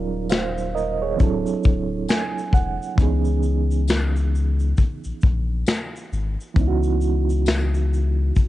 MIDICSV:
0, 0, Header, 1, 4, 480
1, 0, Start_track
1, 0, Tempo, 895522
1, 1597, Time_signature, 4, 2, 24, 8
1, 4546, End_track
2, 0, Start_track
2, 0, Title_t, "Reed electric piano"
2, 0, Program_c, 0, 4
2, 0, Control_c, 0, 64, 127
2, 0, Note_on_c, 0, 54, 71
2, 0, Note_on_c, 0, 61, 63
2, 0, Note_on_c, 0, 63, 70
2, 0, Note_on_c, 0, 65, 70
2, 0, Note_on_c, 0, 68, 49
2, 0, Note_on_c, 0, 70, 78
2, 0, Note_on_c, 0, 74, 61
2, 161, Note_on_c, 0, 77, 65
2, 164, Note_on_c, 0, 72, 54
2, 174, Note_off_c, 0, 70, 0
2, 387, Note_off_c, 0, 77, 0
2, 388, Note_off_c, 0, 72, 0
2, 400, Note_on_c, 0, 75, 73
2, 403, Note_on_c, 0, 70, 60
2, 536, Note_off_c, 0, 75, 0
2, 538, Note_off_c, 0, 70, 0
2, 546, Note_on_c, 0, 73, 65
2, 550, Note_off_c, 0, 68, 0
2, 550, Note_on_c, 0, 68, 55
2, 609, Note_off_c, 0, 54, 0
2, 614, Note_off_c, 0, 61, 0
2, 618, Note_off_c, 0, 63, 0
2, 621, Note_on_c, 0, 52, 59
2, 623, Note_off_c, 0, 65, 0
2, 630, Note_on_c, 0, 60, 70
2, 640, Note_on_c, 0, 62, 59
2, 643, Control_c, 0, 64, 0
2, 647, Note_off_c, 0, 74, 0
2, 649, Note_on_c, 0, 64, 65
2, 657, Note_on_c, 0, 54, 67
2, 658, Note_on_c, 0, 69, 78
2, 671, Note_off_c, 0, 52, 0
2, 744, Control_c, 0, 64, 127
2, 772, Note_off_c, 0, 73, 0
2, 774, Note_off_c, 0, 68, 0
2, 1121, Note_on_c, 0, 80, 71
2, 1342, Note_off_c, 0, 80, 0
2, 1361, Note_on_c, 0, 78, 81
2, 1574, Note_off_c, 0, 60, 0
2, 1579, Note_off_c, 0, 62, 0
2, 1582, Note_off_c, 0, 78, 0
2, 1584, Note_off_c, 0, 64, 0
2, 1586, Note_on_c, 0, 52, 73
2, 1588, Note_off_c, 0, 54, 0
2, 1588, Note_off_c, 0, 69, 0
2, 1595, Note_on_c, 0, 59, 66
2, 1604, Control_c, 0, 64, 0
2, 1605, Note_on_c, 0, 61, 65
2, 1613, Note_on_c, 0, 63, 67
2, 1621, Note_on_c, 0, 68, 80
2, 1693, Control_c, 0, 64, 127
2, 3490, Note_off_c, 0, 52, 0
2, 3494, Note_off_c, 0, 59, 0
2, 3499, Note_off_c, 0, 61, 0
2, 3503, Note_off_c, 0, 63, 0
2, 3506, Note_on_c, 0, 52, 69
2, 3507, Note_off_c, 0, 68, 0
2, 3516, Note_on_c, 0, 59, 64
2, 3524, Note_on_c, 0, 61, 62
2, 3534, Note_on_c, 0, 63, 67
2, 3544, Note_on_c, 0, 64, 62
2, 3572, Note_off_c, 0, 64, 0
2, 3578, Note_on_c, 0, 66, 84
2, 4546, Note_off_c, 0, 52, 0
2, 4546, Note_off_c, 0, 59, 0
2, 4546, Note_off_c, 0, 61, 0
2, 4546, Note_off_c, 0, 63, 0
2, 4546, Note_off_c, 0, 66, 0
2, 4546, End_track
3, 0, Start_track
3, 0, Title_t, "Sub bass"
3, 0, Program_c, 1, 38
3, 0, Note_on_c, 1, 27, 110
3, 617, Note_off_c, 1, 27, 0
3, 646, Note_on_c, 1, 26, 109
3, 774, Note_off_c, 1, 26, 0
3, 889, Note_on_c, 1, 26, 91
3, 1102, Note_off_c, 1, 26, 0
3, 1358, Note_on_c, 1, 28, 86
3, 1489, Note_off_c, 1, 28, 0
3, 1599, Note_on_c, 1, 37, 110
3, 2537, Note_off_c, 1, 37, 0
3, 2708, Note_on_c, 1, 34, 48
3, 2745, Note_off_c, 1, 34, 0
3, 2809, Note_on_c, 1, 34, 92
3, 3021, Note_off_c, 1, 34, 0
3, 3283, Note_on_c, 1, 32, 85
3, 3412, Note_off_c, 1, 32, 0
3, 3521, Note_on_c, 1, 37, 106
3, 4457, Note_off_c, 1, 37, 0
3, 4546, End_track
4, 0, Start_track
4, 0, Title_t, "Drums"
4, 157, Note_on_c, 9, 54, 70
4, 162, Note_on_c, 9, 42, 67
4, 162, Note_on_c, 9, 82, 68
4, 171, Note_on_c, 9, 38, 101
4, 172, Note_on_c, 9, 26, 81
4, 210, Note_off_c, 9, 54, 0
4, 216, Note_off_c, 9, 42, 0
4, 216, Note_off_c, 9, 82, 0
4, 224, Note_off_c, 9, 38, 0
4, 226, Note_off_c, 9, 26, 0
4, 310, Note_on_c, 9, 82, 43
4, 364, Note_off_c, 9, 82, 0
4, 413, Note_on_c, 9, 82, 43
4, 467, Note_off_c, 9, 82, 0
4, 640, Note_on_c, 9, 42, 62
4, 640, Note_on_c, 9, 82, 59
4, 643, Note_on_c, 9, 36, 79
4, 694, Note_off_c, 9, 42, 0
4, 694, Note_off_c, 9, 82, 0
4, 697, Note_off_c, 9, 36, 0
4, 785, Note_on_c, 9, 82, 53
4, 838, Note_off_c, 9, 82, 0
4, 876, Note_on_c, 9, 82, 49
4, 885, Note_on_c, 9, 36, 92
4, 930, Note_off_c, 9, 82, 0
4, 939, Note_off_c, 9, 36, 0
4, 1117, Note_on_c, 9, 54, 77
4, 1122, Note_on_c, 9, 42, 73
4, 1122, Note_on_c, 9, 82, 71
4, 1126, Note_on_c, 9, 38, 102
4, 1128, Note_on_c, 9, 26, 84
4, 1171, Note_off_c, 9, 54, 0
4, 1175, Note_off_c, 9, 42, 0
4, 1175, Note_off_c, 9, 82, 0
4, 1180, Note_off_c, 9, 38, 0
4, 1182, Note_off_c, 9, 26, 0
4, 1277, Note_on_c, 9, 82, 50
4, 1330, Note_off_c, 9, 82, 0
4, 1355, Note_on_c, 9, 36, 89
4, 1364, Note_on_c, 9, 82, 47
4, 1408, Note_off_c, 9, 36, 0
4, 1418, Note_off_c, 9, 82, 0
4, 1514, Note_on_c, 9, 82, 52
4, 1568, Note_off_c, 9, 82, 0
4, 1596, Note_on_c, 9, 36, 124
4, 1601, Note_on_c, 9, 42, 59
4, 1601, Note_on_c, 9, 82, 58
4, 1650, Note_off_c, 9, 36, 0
4, 1655, Note_off_c, 9, 42, 0
4, 1655, Note_off_c, 9, 82, 0
4, 1742, Note_on_c, 9, 82, 45
4, 1795, Note_off_c, 9, 82, 0
4, 1837, Note_on_c, 9, 82, 52
4, 1891, Note_off_c, 9, 82, 0
4, 1989, Note_on_c, 9, 82, 55
4, 2043, Note_off_c, 9, 82, 0
4, 2078, Note_on_c, 9, 54, 65
4, 2081, Note_on_c, 9, 42, 65
4, 2081, Note_on_c, 9, 82, 62
4, 2090, Note_on_c, 9, 38, 94
4, 2091, Note_on_c, 9, 26, 84
4, 2132, Note_off_c, 9, 54, 0
4, 2135, Note_off_c, 9, 42, 0
4, 2135, Note_off_c, 9, 82, 0
4, 2143, Note_off_c, 9, 38, 0
4, 2145, Note_off_c, 9, 26, 0
4, 2231, Note_on_c, 9, 82, 44
4, 2284, Note_off_c, 9, 82, 0
4, 2333, Note_on_c, 9, 82, 45
4, 2387, Note_off_c, 9, 82, 0
4, 2463, Note_on_c, 9, 82, 44
4, 2517, Note_off_c, 9, 82, 0
4, 2558, Note_on_c, 9, 42, 61
4, 2558, Note_on_c, 9, 82, 63
4, 2563, Note_on_c, 9, 36, 81
4, 2612, Note_off_c, 9, 42, 0
4, 2612, Note_off_c, 9, 82, 0
4, 2616, Note_off_c, 9, 36, 0
4, 2702, Note_on_c, 9, 82, 57
4, 2756, Note_off_c, 9, 82, 0
4, 2795, Note_on_c, 9, 82, 47
4, 2805, Note_on_c, 9, 36, 93
4, 2848, Note_off_c, 9, 82, 0
4, 2859, Note_off_c, 9, 36, 0
4, 3036, Note_on_c, 9, 54, 76
4, 3040, Note_on_c, 9, 42, 77
4, 3040, Note_on_c, 9, 82, 72
4, 3044, Note_on_c, 9, 38, 108
4, 3046, Note_on_c, 9, 26, 85
4, 3090, Note_off_c, 9, 54, 0
4, 3093, Note_off_c, 9, 42, 0
4, 3093, Note_off_c, 9, 82, 0
4, 3098, Note_off_c, 9, 38, 0
4, 3100, Note_off_c, 9, 26, 0
4, 3195, Note_on_c, 9, 82, 49
4, 3249, Note_off_c, 9, 82, 0
4, 3285, Note_on_c, 9, 82, 46
4, 3339, Note_off_c, 9, 82, 0
4, 3433, Note_on_c, 9, 82, 46
4, 3487, Note_off_c, 9, 82, 0
4, 3517, Note_on_c, 9, 36, 113
4, 3521, Note_on_c, 9, 42, 55
4, 3521, Note_on_c, 9, 82, 60
4, 3570, Note_off_c, 9, 36, 0
4, 3575, Note_off_c, 9, 42, 0
4, 3575, Note_off_c, 9, 82, 0
4, 3661, Note_on_c, 9, 82, 45
4, 3714, Note_off_c, 9, 82, 0
4, 3758, Note_on_c, 9, 82, 51
4, 3811, Note_off_c, 9, 82, 0
4, 3910, Note_on_c, 9, 82, 55
4, 3964, Note_off_c, 9, 82, 0
4, 3999, Note_on_c, 9, 54, 67
4, 4001, Note_on_c, 9, 42, 60
4, 4001, Note_on_c, 9, 82, 61
4, 4009, Note_on_c, 9, 38, 96
4, 4011, Note_on_c, 9, 26, 86
4, 4052, Note_off_c, 9, 54, 0
4, 4054, Note_off_c, 9, 42, 0
4, 4054, Note_off_c, 9, 82, 0
4, 4063, Note_off_c, 9, 38, 0
4, 4065, Note_off_c, 9, 26, 0
4, 4151, Note_on_c, 9, 82, 41
4, 4205, Note_off_c, 9, 82, 0
4, 4253, Note_on_c, 9, 82, 48
4, 4307, Note_off_c, 9, 82, 0
4, 4479, Note_on_c, 9, 42, 63
4, 4479, Note_on_c, 9, 82, 65
4, 4483, Note_on_c, 9, 36, 76
4, 4532, Note_off_c, 9, 42, 0
4, 4532, Note_off_c, 9, 82, 0
4, 4537, Note_off_c, 9, 36, 0
4, 4546, End_track
0, 0, End_of_file